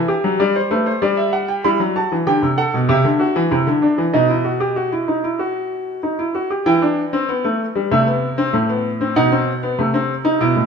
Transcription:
grand piano
Already playing: E3 E5
0.08 G4
0.24 F#3
0.40 G3 D5
0.56 C5
0.71 A3 B4
0.86 C5
1.02 G3 D5
1.17 E5
1.33 F#5
1.48 G5
1.64 G3 E4 B5
1.80 F#3
1.96 F#4 A5
2.12 E3
2.27 D3 G4 G5
2.42 C3
2.58 A4 F#5
2.74 B2
2.89 C3 G4 E5
3.04 D3
3.20 F#4
3.36 E3
3.51 C3 E4
3.67 D3
3.82 D4
3.98 E3
4.14 B2 D#4 D#5
4.29 E4
4.45 F#4
4.60 G4
4.76 F#4
4.92 E4
5.08 D#4
5.24 E4
5.39 F#4
6.03 D#4
6.19 E4
6.35 F#4
6.50 G4
6.66 E3 E4 G5
6.82 D4
7.13 C4
7.29 B3
7.44 A3
7.75 G3
7.91 C3 A3 E5
8.07 B3
8.38 C4
8.53 A2 A3
8.69 B3
9.01 C4
9.16 B2 D#4 F#5
9.32 C4
9.63 B3
9.78 C3 A3
9.94 C4
10.25 D#4
10.41 B2 E4
10.56 A2

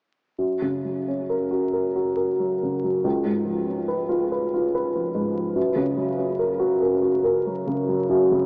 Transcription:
upright piano
0.38 F#2
0.62 C#3
0.85 F#3
1.08 C#4
1.29 A#4
1.51 F#4
1.73 A#4
1.96 F#4
2.17 A#4
2.40 F#3
2.63 C#3
2.84 F#3
3.04 C#2
3.25 G#2
3.44 F3
3.67 C#4
3.88 B4
4.09 F4
4.32 B4
4.54 F4
4.75 B4
4.95 F3
5.14 G#2
5.34 F3
5.55 F#2
5.75 C#3
5.97 F#3
6.17 C#4
6.39 A#4
6.60 F#4
6.82 A#4
7.02 F#4
7.24 A#4
7.46 F#3
7.67 C#3
7.88 F#3
8.09 F#2
8.31 C#3

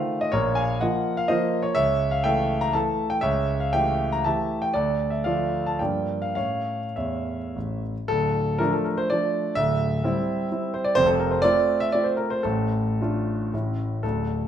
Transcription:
grand piano
Already playing: D#3 A3 F4 C5 F5
0.21 D#5
0.32 A#1 A#4 C#5
0.55 F5 G#5
0.81 F3 A#3 F4 D#5 F#5
1.17 F5
1.28 F3 A#3 F4 C5 D#5
1.63 C#5
1.75 C#2 C#5 E5
2.11 F5
2.24 E3 A3 A4 E5 G5
2.61 A#5
2.73 E3 A3 A4 E5 A5
3.10 G5
3.21 C#2 C#5 E5
3.60 F5
3.73 E3 A3 G4 E5 G5
4.12 A#5
4.24 E3 A3 G4 E5 A5
4.62 G5
4.74 D2 A4 D5
5.10 E5
5.24 F3 A3 F4 D5 F5
5.66 A5
5.79 G2 F3 A#3 D4 D5 G5
6.22 F5
6.35 A2 A3 C#4 C#5 F5
6.96 E2 C#5 E5
7.56 A1
8.08 D1 D2 A4
8.58 F3 A3 D4 A#4
8.72 A4
8.84 A#4
8.98 C5
9.10 F3 A3 D4 D5
9.55 D1 D2 E5
10.04 G3 C4 E4
10.52 G3 C4 E4
10.74 C5
10.84 D5
10.95 F1 F2 C5
11.06 A4
11.19 A#4
11.31 C5
11.42 A3 C4 F4 D5
11.80 E5
11.92 A3 C4 F4 D5
12.04 C5
12.17 A#4
12.30 C5
12.43 A1 A2 A4
13.02 A3 D4 F4
13.53 A1 A2 A3 C#4 E4
14.03 D1 D2 A4

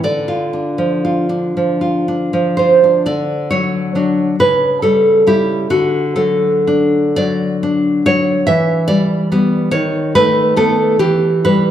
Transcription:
nylon-string guitar
0.04 D3 D5
0.28 F4
0.53 D4
0.78 F3
1.05 F4
1.29 D4
1.57 F3
1.81 F4
2.08 D4
2.33 F3
2.57 F4 C5
2.84 D4
3.06 D3 D5
3.51 F#3 C#5
3.95 F#3 D4
4.40 C#3 B4
4.82 G3 A4
5.27 G3 E4 G4
5.70 D3 F#4
6.16 F#3 A4
6.67 D4
7.16 F#3 D5
7.63 D4
8.06 F#3 C#5
8.47 E3 E5
8.88 G3 D5
9.32 G3 B3
9.71 D#3 C#5
10.15 A3 B4
10.56 A3 B3 A4
10.99 E3 G4
11.45 G3 B4

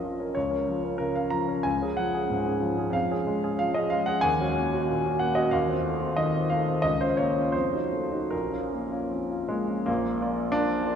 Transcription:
grand piano
Already playing: F2 F3 C#4 A#4 D#5 F5
0.03 F3
0.19 C#4 A#4
0.35 C#2 C#5
0.51 C#4 A#4
0.68 F3
0.84 C#4 A#4
0.98 C#3 A#4
1.16 C#4 A#4 F5
1.30 F3 A#5
1.48 C#4 A#4
1.63 C#2 G#5
1.82 C#4 G#4
1.97 F3 F#5
2.15 C#4 G#4
2.30 G#2
2.45 C#4 G#4
2.60 F3
2.78 C#4 G#4
2.90 F2 F5
3.11 C#4 G#4
3.27 G#3
3.43 C#4 G#4
3.59 F3 F5
3.74 C#4 G#4 D#5
3.90 G#3 F5
4.06 C#4 G#4 F#5
4.21 D#2 G#5
4.41 C#4 F#4
4.56 A#3
4.74 C#4 F#4
4.89 A#2
5.06 C#4 F#4
5.19 A#3 F#5
5.35 C#4 F#4 D#5
5.51 D#2 F5
5.69 C4 F4
5.84 A3
6.01 C4 F4
6.17 D#3 D#5
6.34 C4 F4
6.50 A3 F5
6.68 C4 F4
6.82 C#2 D#5
7.01 C#4 F4 C5
7.17 A#3 C#5
7.37 C#4 F4
7.52 F2 C5
7.73 D#4 F#4
7.92 A3
8.13 D#4 F#4
8.31 A#1 A#4
8.52 C#4 F4
8.73 A#3
8.92 C#4 F4
9.11 F2
9.31 C#4 F4
9.49 G#3 A#3
9.69 C#4 F4
9.86 A#1 A#3
10.21 F4 A#4 D5
10.52 D4 F4 A#4 D5
10.86 F4 A#4 D5

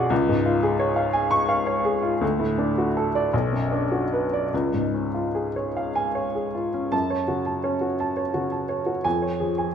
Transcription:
upright piano
Already playing: B1 F#2 F#4 G#4 D5 F#5 G#5 D6
0.10 C#2
0.29 G#2
0.46 F4
0.63 G#4
0.79 C#5
0.96 F5
1.13 G#5
1.31 C#6
1.49 F5
1.67 C#5
1.85 G#4
2.02 F4
2.21 D2
2.39 A2
2.58 D4
2.78 F#4
2.97 A4
3.15 D5
3.34 B1
3.53 F#2
3.72 D4
3.92 F#4
4.13 B4
4.33 D5
4.54 C#2
4.74 G#2
4.94 C#4
5.14 F4
5.35 G#4
5.56 C#5
5.77 F5
5.95 G#5
6.15 C#5
6.35 G#4
6.55 F4
6.74 C#4
6.92 F#2 A5
7.10 C#5
7.28 C#3 F#4
7.46 A5
7.64 C#4 C#5
7.81 F#4
8.00 A5
8.17 C#5
8.34 C#3 F#4
8.52 A5
8.69 C#5
8.86 F#4
9.04 F2 G#5
9.22 C#5
9.40 F3 G#4
9.58 G#5

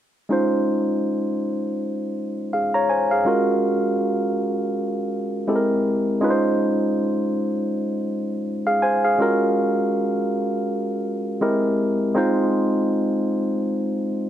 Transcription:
tine electric piano
0.29 G#3 C#4 D#4 F4 C5
2.53 G#4 F5
2.74 C#5 A#5
2.90 C5 G#5
3.11 G#4 F5
3.25 G#3 C#4 F4 F#4 A#4
5.48 G#3 C4 E4 G4 A4
5.56 A#4
6.21 G#3 C#4 D#4 F4 B4
6.30 C5
8.67 G#4 F5
8.82 C5 G#5
9.05 G#4 F5
9.19 G#3 C#4 F4 F#4 A#4
11.41 G#3 C4 E4 G4 A#4
12.14 G#3 C4 D#4 F4 C5

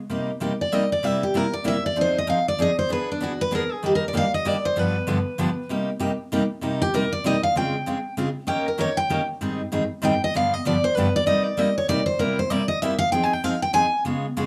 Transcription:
steel-string acoustic guitar
0.10 C3 G3 A#3 D#4 G4
0.40 C3 G3 A#3 D#4 G4
0.61 D5
0.72 C3 G3 A#3 D#4 G4 D#5
0.92 D5
1.03 C3 G3 A#3 E4 G4 E5
1.23 G4
1.34 C3 G3 A#3 E4 G4 A#4
1.53 D5
1.64 C3 G3 A#3 E4 G4 E5
1.86 D5
1.96 F3 C4 D#4 G#4
2.01 C5
2.18 D#5
2.27 F3 C4 D#4 G#4 F5
2.48 D5
2.59 F3 C4 D#4 G#4 D#5
2.79 C5
2.89 E3 B3 D4 G#4 B4
3.12 D4
3.21 E3 B3 D4 F#4 G#4
3.41 B4
3.51 E3 B3 D4 G#4 A#4
3.72 G#4
3.83 D#3 G3 A#3 D4 G4
3.95 A#4
4.08 D5
4.13 D#3 G3 A#3 D4 G4
4.17 F5
4.34 D#5
4.45 D#3 G3 A#3 D4 G4 D5
4.65 C5
4.76 G2 D3 F3 B3 D4 G4 B4
5.07 G2 D3 F3 B3 D4 G4
5.38 G2 D3 F3 B3 D4 G4
5.69 C3 G3 A#3 D#4 G4
5.99 C3 G3 A#3 D#4 G4
6.32 C3 G3 A#3 D#4 G4
6.61 C3 G3 A#3 D#4 G4
6.82 G4
6.94 C3 G3 A#3 D#4 G4 A#4
7.12 D5
7.24 C3 G3 A#3 D#4 G4 D#5
7.43 F5
7.56 C#3 G#3 C4 F4 G#4 G5
7.86 C#3 G#3 C4 F4 G#4
8.17 C#3 G#3 C4 F4 G#4
8.47 D#3 A#3 C#4 G4 A#4 G5
8.68 A#4
8.78 D#3 A#3 C#4 G4 A#4 C#5
8.97 G5
9.10 D#3 A#3 C#4 G4 A#4
9.41 G#2 D#3 G3 C4 D#4 G#4
9.72 G#2 D#3 G3 C4 D#4 G#4
10.02 G#2 D#3 G3 C4 D#4 G#4 G5
10.24 D#5
10.34 G2 D3 F3 B3 D4 G4 F5
10.54 D#5
10.65 G2 D3 F3 B3 D4 G4 D5
10.84 C5
10.95 G2 D3 F3 B3 D4 G4 B4
11.16 D5
11.26 C3 G3 A#3 D#4 G4 D#5
11.44 D5
11.57 C3 G3 A#3 D#4 G4 D#5
11.78 C#5
11.88 C3 G3 A#3 D#4 G4 D5
12.06 C5
12.19 C3 G3 A#3 E4 G4 A#4
12.39 C5
12.50 C3 G3 A#3 E4 G4 D5
12.68 D#5
12.82 C3 G3 A#3 E4 G4 E5
12.99 F5
13.12 F3 C4 D#4 G#4 G5
13.23 G#5
13.33 G5
13.44 F3 C4 D#4 G#4 F5
13.62 G5
13.73 F3 C4 D#4 G#4 G#5
14.05 C#3 G#3 B3 F4 G#4
14.37 C#3 G#3 B3 F4 G#4

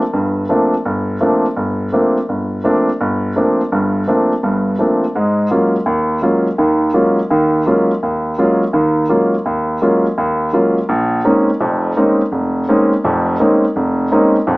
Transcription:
grand piano
0.13 G1 G2
0.49 F3 A3 A#3 C4 D4
0.85 G1
1.20 F3 A3 A#3 C4 D4
1.56 G1
1.92 F3 A3 A#3 C4 D4
2.29 G1
2.64 F3 A3 A#3 C4 D4
3.01 G1
3.36 F3 A3 A#3 C4 D4
3.72 G1 G2
4.08 F3 A3 A#3 C4 D4
4.43 G1 G2
4.79 F3 A3 A#3 C4 D4
5.15 G#2 G#3
5.51 F#3 G#3 A#3 C#4 F4
5.86 D#2
6.22 F#3 G#3 A#3 C#4 F4
6.58 D#2 D#3
6.94 F#3 G#3 A#3 C#4 F4
7.30 D#2 D#3
7.66 F#3 G#3 A#3 C#4 F4
8.03 D#2
8.38 F#3 G#3 A#3 C#4 F4
8.73 D#2 D#3
9.09 F#3 G#3 A#3 C#4 F4
9.46 D#2
9.81 F#3 G#3 A#3 C#4 F4
10.18 D#2
10.53 F#3 G#3 A#3 C#4 F4
10.89 A#1
11.24 G#3 A#3 C4 C#4 D#4
11.60 F1 F2
11.96 G#3 A#3 C4 C#4 D#4
12.32 F1
12.69 G#3 A#3 C4 C#4 D#4
13.04 F1 F2
13.40 G#3 A#3 C4 C#4 D#4
13.76 F1
14.11 G#3 A#3 C4 C#4 D#4
14.47 F1 F2

